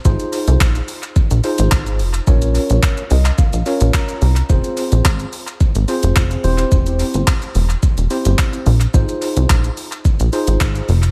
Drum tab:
HH |-xox-xox-xox-xox|-xox-xox-xox-xox|-xox-xox-xox-xox|-xox-xox-xox-xox|
SH |xxxxxxxxxxxxxxxx|xxxxxxxxxxxxxxxx|xxxxxxxxxxxxxxxx|xxxxxxxxxxxxxxxx|
CP |----x-------x---|----x--x----x---|----x-------x---|----x-------x---|
BD |o---o---o---o---|o---o---o---o---|o---o---o---o---|o---o---o---o---|

HH |-xox-xox-xox-xox|
SH |xxxxxxxxxxxxxxxx|
CP |----x-------x---|
BD |o---o---o---o---|